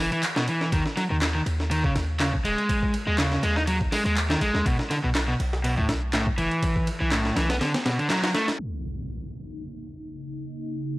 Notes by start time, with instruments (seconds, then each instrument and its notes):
0.00 overdriven electric guitar E3
0.12 overdriven electric guitar E3, ride
0.23 clap, ride
0.36 overdriven electric guitar B2, snare
0.48 overdriven electric guitar E3, ride
0.61 snare
0.72 808-style bass D#2, overdriven electric guitar D#3, kick, ride
0.86 snare
0.97 overdriven electric guitar F#3, snare, ride
1.10 808-style bass D#2, overdriven electric guitar D#3
1.22 snare, clap, ride
1.35 overdriven electric guitar D#3
1.46 808-style bass D#2, ride
1.60 snare
1.71 overdriven electric guitar D#3, ride
1.84 overdriven electric guitar C#3, kick
1.96 808-style bass D#2, snare, ride
2.20 overdriven electric guitar C#3, snare, clap, ride
2.33 kick
2.44 808-style bass D#1, overdriven electric guitar G#3, ride
2.58 ride
2.69 kick, ride
2.83 kick
2.94 ride
3.07 808-style bass D#2, overdriven electric guitar G#3
3.18 overdriven electric guitar C#3, snare, clap, ride
3.32 snare
3.43 808-style bass D#2, overdriven electric guitar G#3, ride
3.56 overdriven electric guitar D#4, snare
3.67 overdriven electric guitar F#3, ride
3.81 kick
3.92 overdriven electric guitar G#3, snare, open hi-hat
4.05 808-style bass D#2, overdriven electric guitar G#3, ride
4.17 clap, ride
4.30 overdriven electric guitar D#3, snare
4.41 808-style bass A#1, overdriven electric guitar G#3, ride
4.54 808-style bass D#2, snare
4.66 808-style bass B1, overdriven electric guitar B2, kick, ride
4.79 snare
4.90 overdriven electric guitar D3, snare, ride
5.04 808-style bass B1, overdriven electric guitar B2
5.15 snare, clap, ride
5.28 overdriven electric guitar B2
5.40 808-style bass B1, ride
5.53 snare
5.64 overdriven electric guitar B2, ride
5.77 overdriven electric guitar A2, kick
5.89 808-style bass B1, snare, ride
6.13 overdriven electric guitar A2, snare, clap, ride
6.27 kick
6.38 808-style bass F#1, overdriven electric guitar E3, ride
6.51 ride
6.63 kick, ride
6.76 kick
6.87 ride
7.00 808-style bass B1, overdriven electric guitar E3
7.12 overdriven electric guitar A2, snare, clap, ride
7.25 snare
7.36 808-style bass B1, overdriven electric guitar E3, snare, ride
7.49 overdriven electric guitar B3, snare, ride
7.61 overdriven electric guitar D3, snare, ride
7.74 snare, ride
7.86 overdriven electric guitar B2, snare, ride
7.99 overdriven electric guitar D3, ride
8.10 overdriven electric guitar F#3, snare, clap, ride
8.23 overdriven electric guitar F#3, snare, ride
8.34 overdriven electric guitar A3, snare, ride
8.48 snare, ride
8.59 analog synth pad C#3 A#3 D#4 F#4, impact
8.84 tambourine
9.33 tambourine
9.47 tambourine
9.58 tambourine
9.82 tambourine
9.96 tambourine
10.07 tambourine
10.31 tambourine
10.45 tambourine
10.56 tambourine
10.81 tambourine
10.94 tambourine